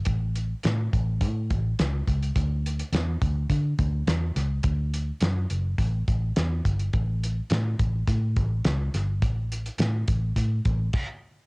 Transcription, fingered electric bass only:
0, 0, Header, 1, 2, 480
1, 0, Start_track
1, 0, Key_signature, 2, "major"
1, 0, Tempo, 572519
1, 55, Time_signature, 4, 2, 24, 8
1, 9611, End_track
2, 0, Start_track
2, 0, Title_t, "Fingered electric bass"
2, 0, Program_c, 0, 33
2, 60, Note_on_c, 0, 33, 83
2, 442, Note_off_c, 0, 33, 0
2, 542, Note_on_c, 0, 45, 80
2, 732, Note_off_c, 0, 45, 0
2, 783, Note_on_c, 0, 33, 75
2, 1017, Note_on_c, 0, 45, 90
2, 1030, Note_off_c, 0, 33, 0
2, 1266, Note_on_c, 0, 33, 78
2, 1279, Note_off_c, 0, 45, 0
2, 1454, Note_off_c, 0, 33, 0
2, 1502, Note_on_c, 0, 37, 79
2, 1691, Note_off_c, 0, 37, 0
2, 1743, Note_on_c, 0, 37, 79
2, 1932, Note_off_c, 0, 37, 0
2, 1979, Note_on_c, 0, 38, 86
2, 2362, Note_off_c, 0, 38, 0
2, 2453, Note_on_c, 0, 40, 85
2, 2646, Note_off_c, 0, 40, 0
2, 2700, Note_on_c, 0, 38, 81
2, 2890, Note_off_c, 0, 38, 0
2, 2933, Note_on_c, 0, 50, 89
2, 3126, Note_off_c, 0, 50, 0
2, 3177, Note_on_c, 0, 38, 97
2, 3368, Note_off_c, 0, 38, 0
2, 3412, Note_on_c, 0, 40, 77
2, 3605, Note_off_c, 0, 40, 0
2, 3655, Note_on_c, 0, 37, 73
2, 3847, Note_off_c, 0, 37, 0
2, 3892, Note_on_c, 0, 38, 93
2, 4278, Note_off_c, 0, 38, 0
2, 4373, Note_on_c, 0, 42, 81
2, 4566, Note_off_c, 0, 42, 0
2, 4616, Note_on_c, 0, 30, 79
2, 4808, Note_off_c, 0, 30, 0
2, 4851, Note_on_c, 0, 33, 79
2, 5045, Note_off_c, 0, 33, 0
2, 5099, Note_on_c, 0, 33, 81
2, 5290, Note_off_c, 0, 33, 0
2, 5340, Note_on_c, 0, 40, 91
2, 5531, Note_off_c, 0, 40, 0
2, 5577, Note_on_c, 0, 31, 77
2, 5769, Note_off_c, 0, 31, 0
2, 5817, Note_on_c, 0, 33, 86
2, 6201, Note_off_c, 0, 33, 0
2, 6295, Note_on_c, 0, 45, 78
2, 6487, Note_off_c, 0, 45, 0
2, 6537, Note_on_c, 0, 33, 74
2, 6729, Note_off_c, 0, 33, 0
2, 6774, Note_on_c, 0, 45, 99
2, 7017, Note_on_c, 0, 33, 94
2, 7029, Note_off_c, 0, 45, 0
2, 7209, Note_off_c, 0, 33, 0
2, 7253, Note_on_c, 0, 37, 93
2, 7447, Note_off_c, 0, 37, 0
2, 7496, Note_on_c, 0, 31, 74
2, 7735, Note_off_c, 0, 31, 0
2, 7735, Note_on_c, 0, 33, 99
2, 8119, Note_off_c, 0, 33, 0
2, 8212, Note_on_c, 0, 45, 83
2, 8406, Note_off_c, 0, 45, 0
2, 8454, Note_on_c, 0, 33, 76
2, 8647, Note_off_c, 0, 33, 0
2, 8686, Note_on_c, 0, 45, 91
2, 8883, Note_off_c, 0, 45, 0
2, 8934, Note_on_c, 0, 33, 81
2, 9127, Note_off_c, 0, 33, 0
2, 9611, End_track
0, 0, End_of_file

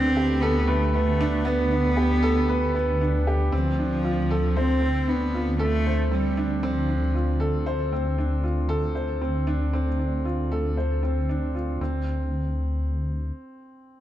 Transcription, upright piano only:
0, 0, Header, 1, 2, 480
1, 0, Start_track
1, 0, Tempo, 517241
1, 1351, Time_signature, 4, 2, 24, 8
1, 12994, End_track
2, 0, Start_track
2, 0, Title_t, "Upright piano"
2, 0, Program_c, 0, 0
2, 0, Control_c, 0, 64, 127
2, 0, Note_on_c, 0, 59, 73
2, 0, Note_on_c, 0, 62, 77
2, 0, Note_on_c, 0, 67, 71
2, 0, Note_on_c, 0, 69, 105
2, 0, Note_on_c, 0, 71, 77
2, 141, Note_off_c, 0, 62, 0
2, 155, Note_off_c, 0, 67, 0
2, 155, Note_on_c, 0, 67, 75
2, 381, Note_off_c, 0, 67, 0
2, 392, Note_off_c, 0, 69, 0
2, 392, Note_on_c, 0, 69, 94
2, 620, Note_off_c, 0, 69, 0
2, 631, Note_off_c, 0, 71, 0
2, 631, Note_on_c, 0, 71, 74
2, 859, Note_off_c, 0, 71, 0
2, 874, Note_off_c, 0, 59, 0
2, 874, Note_on_c, 0, 59, 78
2, 1100, Note_off_c, 0, 59, 0
2, 1120, Note_on_c, 0, 62, 109
2, 1344, Note_off_c, 0, 62, 0
2, 1345, Note_on_c, 0, 59, 102
2, 1485, Note_off_c, 0, 59, 0
2, 1595, Note_on_c, 0, 62, 71
2, 1821, Note_off_c, 0, 62, 0
2, 1827, Note_on_c, 0, 67, 76
2, 2057, Note_off_c, 0, 67, 0
2, 2067, Note_on_c, 0, 69, 96
2, 2297, Note_off_c, 0, 69, 0
2, 2312, Note_on_c, 0, 71, 82
2, 2540, Note_off_c, 0, 71, 0
2, 2552, Note_on_c, 0, 59, 74
2, 2780, Note_off_c, 0, 59, 0
2, 2795, Note_on_c, 0, 62, 73
2, 3021, Note_off_c, 0, 62, 0
2, 3036, Note_on_c, 0, 67, 73
2, 3262, Note_off_c, 0, 67, 0
2, 3270, Note_on_c, 0, 60, 84
2, 3284, Control_c, 0, 64, 0
2, 3407, Note_off_c, 0, 60, 0
2, 3418, Control_c, 0, 64, 127
2, 3515, Note_on_c, 0, 62, 65
2, 3741, Note_off_c, 0, 62, 0
2, 3755, Note_on_c, 0, 65, 74
2, 3981, Note_off_c, 0, 65, 0
2, 3997, Note_on_c, 0, 69, 84
2, 4222, Note_off_c, 0, 69, 0
2, 4237, Note_on_c, 0, 72, 75
2, 4462, Note_off_c, 0, 72, 0
2, 4472, Note_on_c, 0, 60, 68
2, 4700, Note_off_c, 0, 60, 0
2, 4713, Note_on_c, 0, 62, 63
2, 4940, Note_off_c, 0, 62, 0
2, 4958, Note_on_c, 0, 65, 67
2, 5183, Note_off_c, 0, 65, 0
2, 5191, Note_on_c, 0, 69, 89
2, 5419, Note_off_c, 0, 69, 0
2, 5441, Note_on_c, 0, 72, 68
2, 5664, Note_off_c, 0, 72, 0
2, 5674, Note_on_c, 0, 60, 69
2, 5901, Note_off_c, 0, 60, 0
2, 5915, Note_on_c, 0, 62, 82
2, 6141, Note_off_c, 0, 62, 0
2, 6153, Note_on_c, 0, 60, 92
2, 6289, Note_off_c, 0, 60, 0
2, 6393, Note_on_c, 0, 62, 62
2, 6620, Note_off_c, 0, 62, 0
2, 6633, Note_on_c, 0, 65, 62
2, 6860, Note_off_c, 0, 65, 0
2, 6866, Note_on_c, 0, 69, 83
2, 7097, Note_off_c, 0, 69, 0
2, 7112, Note_on_c, 0, 72, 73
2, 7339, Note_off_c, 0, 72, 0
2, 7355, Note_on_c, 0, 60, 62
2, 7581, Note_off_c, 0, 60, 0
2, 7595, Note_on_c, 0, 62, 67
2, 7821, Note_off_c, 0, 62, 0
2, 7829, Note_on_c, 0, 65, 65
2, 8058, Note_off_c, 0, 65, 0
2, 8063, Note_on_c, 0, 69, 85
2, 8295, Note_off_c, 0, 69, 0
2, 8308, Note_on_c, 0, 72, 64
2, 8538, Note_off_c, 0, 72, 0
2, 8552, Note_on_c, 0, 60, 63
2, 8779, Note_off_c, 0, 60, 0
2, 8789, Note_on_c, 0, 62, 85
2, 9018, Note_off_c, 0, 62, 0
2, 9033, Note_on_c, 0, 60, 74
2, 9169, Note_off_c, 0, 60, 0
2, 9274, Note_on_c, 0, 62, 55
2, 9500, Note_off_c, 0, 62, 0
2, 9515, Note_on_c, 0, 65, 63
2, 9741, Note_off_c, 0, 65, 0
2, 9759, Note_on_c, 0, 69, 76
2, 9983, Note_off_c, 0, 69, 0
2, 9997, Note_on_c, 0, 72, 62
2, 10222, Note_off_c, 0, 72, 0
2, 10235, Note_on_c, 0, 60, 59
2, 10461, Note_off_c, 0, 60, 0
2, 10480, Note_on_c, 0, 62, 61
2, 10704, Note_off_c, 0, 62, 0
2, 10717, Note_on_c, 0, 65, 57
2, 10942, Note_off_c, 0, 65, 0
2, 10962, Note_on_c, 0, 60, 69
2, 10964, Control_c, 0, 64, 0
2, 11130, Control_c, 0, 64, 127
2, 11180, Note_off_c, 0, 60, 0
2, 12994, End_track
0, 0, End_of_file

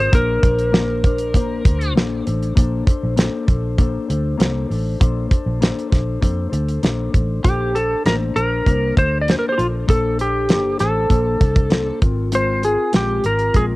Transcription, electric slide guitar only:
0, 0, Header, 1, 2, 480
1, 0, Start_track
1, 0, Key_signature, -2, "major"
1, 0, Tempo, 610376
1, 103, Time_signature, 4, 2, 24, 8
1, 10819, End_track
2, 0, Start_track
2, 0, Title_t, "Electric slide guitar"
2, 0, Program_c, 0, 29
2, 0, Note_on_c, 0, 72, 91
2, 113, Note_off_c, 0, 72, 0
2, 115, Note_on_c, 0, 70, 102
2, 1515, Note_off_c, 0, 70, 0
2, 5854, Note_on_c, 0, 67, 83
2, 6095, Note_on_c, 0, 69, 82
2, 6103, Note_off_c, 0, 67, 0
2, 6336, Note_off_c, 0, 69, 0
2, 6339, Note_on_c, 0, 70, 92
2, 6403, Note_off_c, 0, 70, 0
2, 6573, Note_on_c, 0, 70, 88
2, 7061, Note_off_c, 0, 70, 0
2, 7064, Note_on_c, 0, 72, 94
2, 7243, Note_off_c, 0, 72, 0
2, 7246, Note_on_c, 0, 74, 77
2, 7318, Note_on_c, 0, 72, 83
2, 7320, Note_off_c, 0, 74, 0
2, 7378, Note_off_c, 0, 72, 0
2, 7381, Note_on_c, 0, 70, 80
2, 7459, Note_off_c, 0, 70, 0
2, 7462, Note_on_c, 0, 72, 94
2, 7489, Note_on_c, 0, 67, 58
2, 7528, Note_off_c, 0, 67, 0
2, 7531, Note_on_c, 0, 65, 73
2, 7535, Note_off_c, 0, 72, 0
2, 7597, Note_off_c, 0, 65, 0
2, 7784, Note_on_c, 0, 69, 94
2, 8004, Note_off_c, 0, 69, 0
2, 8030, Note_on_c, 0, 67, 87
2, 8493, Note_off_c, 0, 67, 0
2, 8496, Note_on_c, 0, 69, 80
2, 9426, Note_off_c, 0, 69, 0
2, 9712, Note_on_c, 0, 72, 88
2, 9929, Note_off_c, 0, 72, 0
2, 9945, Note_on_c, 0, 68, 73
2, 10189, Note_off_c, 0, 68, 0
2, 10193, Note_on_c, 0, 67, 82
2, 10410, Note_off_c, 0, 67, 0
2, 10427, Note_on_c, 0, 70, 76
2, 10666, Note_on_c, 0, 68, 92
2, 10670, Note_off_c, 0, 70, 0
2, 10730, Note_off_c, 0, 68, 0
2, 10819, End_track
0, 0, End_of_file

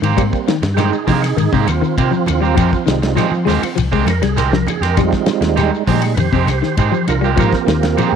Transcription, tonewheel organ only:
0, 0, Header, 1, 2, 480
1, 0, Start_track
1, 0, Key_signature, -4, "minor"
1, 0, Tempo, 599401
1, 142, Time_signature, 4, 2, 24, 8
1, 6532, End_track
2, 0, Start_track
2, 0, Title_t, "Tonewheel organ"
2, 0, Program_c, 0, 16
2, 128, Note_on_c, 0, 55, 58
2, 132, Note_on_c, 0, 58, 52
2, 141, Note_on_c, 0, 60, 69
2, 455, Note_off_c, 0, 55, 0
2, 457, Note_off_c, 0, 58, 0
2, 461, Note_off_c, 0, 60, 0
2, 595, Note_on_c, 0, 67, 68
2, 624, Note_off_c, 0, 67, 0
2, 624, Note_on_c, 0, 63, 87
2, 633, Note_on_c, 0, 68, 102
2, 847, Note_off_c, 0, 63, 0
2, 861, Note_off_c, 0, 68, 0
2, 873, Note_on_c, 0, 63, 78
2, 884, Note_on_c, 0, 68, 93
2, 1092, Note_off_c, 0, 63, 0
2, 1107, Note_off_c, 0, 68, 0
2, 1118, Note_on_c, 0, 63, 90
2, 1122, Note_on_c, 0, 68, 101
2, 1334, Note_off_c, 0, 63, 0
2, 1346, Note_off_c, 0, 68, 0
2, 1355, Note_on_c, 0, 60, 90
2, 1356, Note_on_c, 0, 65, 95
2, 1573, Note_off_c, 0, 60, 0
2, 1583, Note_off_c, 0, 65, 0
2, 1593, Note_on_c, 0, 60, 87
2, 1594, Note_on_c, 0, 65, 94
2, 1812, Note_off_c, 0, 60, 0
2, 1822, Note_off_c, 0, 65, 0
2, 1832, Note_on_c, 0, 60, 90
2, 1843, Note_on_c, 0, 65, 98
2, 2051, Note_off_c, 0, 60, 0
2, 2066, Note_off_c, 0, 65, 0
2, 2086, Note_on_c, 0, 60, 89
2, 2086, Note_on_c, 0, 65, 103
2, 2294, Note_on_c, 0, 55, 57
2, 2299, Note_on_c, 0, 63, 64
2, 2300, Note_on_c, 0, 56, 56
2, 2619, Note_off_c, 0, 55, 0
2, 2621, Note_off_c, 0, 63, 0
2, 2622, Note_off_c, 0, 56, 0
2, 3003, Note_off_c, 0, 60, 0
2, 3007, Note_off_c, 0, 65, 0
2, 3241, Note_on_c, 0, 69, 89
2, 3269, Note_off_c, 0, 69, 0
2, 3284, Note_on_c, 0, 70, 121
2, 3387, Note_off_c, 0, 70, 0
2, 3392, Note_on_c, 0, 68, 95
2, 3500, Note_off_c, 0, 68, 0
2, 3511, Note_on_c, 0, 70, 105
2, 3608, Note_on_c, 0, 69, 70
2, 3620, Note_off_c, 0, 70, 0
2, 3634, Note_off_c, 0, 69, 0
2, 3641, Note_on_c, 0, 70, 100
2, 3745, Note_off_c, 0, 70, 0
2, 3765, Note_on_c, 0, 68, 92
2, 3868, Note_off_c, 0, 68, 0
2, 3879, Note_on_c, 0, 70, 93
2, 3983, Note_on_c, 0, 55, 61
2, 3984, Note_off_c, 0, 70, 0
2, 3991, Note_on_c, 0, 56, 52
2, 3992, Note_on_c, 0, 63, 69
2, 3993, Note_on_c, 0, 60, 93
2, 4001, Note_on_c, 0, 65, 99
2, 4437, Note_off_c, 0, 60, 0
2, 4458, Note_off_c, 0, 65, 0
2, 4672, Note_off_c, 0, 55, 0
2, 4675, Note_off_c, 0, 56, 0
2, 4676, Note_off_c, 0, 63, 0
2, 4711, Note_on_c, 0, 55, 55
2, 4712, Note_on_c, 0, 56, 52
2, 4718, Note_on_c, 0, 63, 57
2, 4921, Note_on_c, 0, 71, 78
2, 4924, Note_off_c, 0, 55, 0
2, 4925, Note_off_c, 0, 56, 0
2, 4928, Note_off_c, 0, 63, 0
2, 4949, Note_off_c, 0, 71, 0
2, 4961, Note_on_c, 0, 67, 97
2, 4964, Note_on_c, 0, 72, 102
2, 5176, Note_off_c, 0, 67, 0
2, 5187, Note_off_c, 0, 72, 0
2, 5193, Note_on_c, 0, 67, 85
2, 5207, Note_on_c, 0, 72, 94
2, 5412, Note_off_c, 0, 67, 0
2, 5425, Note_off_c, 0, 72, 0
2, 5434, Note_on_c, 0, 72, 111
2, 5437, Note_on_c, 0, 67, 101
2, 5654, Note_off_c, 0, 67, 0
2, 5662, Note_off_c, 0, 72, 0
2, 5672, Note_on_c, 0, 65, 87
2, 5681, Note_on_c, 0, 70, 96
2, 5891, Note_off_c, 0, 65, 0
2, 5905, Note_off_c, 0, 70, 0
2, 5914, Note_on_c, 0, 58, 54
2, 5917, Note_on_c, 0, 67, 58
2, 5921, Note_on_c, 0, 60, 69
2, 5923, Note_on_c, 0, 65, 86
2, 5926, Note_on_c, 0, 70, 99
2, 6137, Note_off_c, 0, 65, 0
2, 6147, Note_off_c, 0, 70, 0
2, 6156, Note_on_c, 0, 70, 92
2, 6157, Note_on_c, 0, 65, 81
2, 6374, Note_off_c, 0, 65, 0
2, 6383, Note_off_c, 0, 70, 0
2, 6389, Note_on_c, 0, 68, 105
2, 6532, Note_off_c, 0, 58, 0
2, 6532, Note_off_c, 0, 60, 0
2, 6532, Note_off_c, 0, 67, 0
2, 6532, Note_off_c, 0, 68, 0
2, 6532, End_track
0, 0, End_of_file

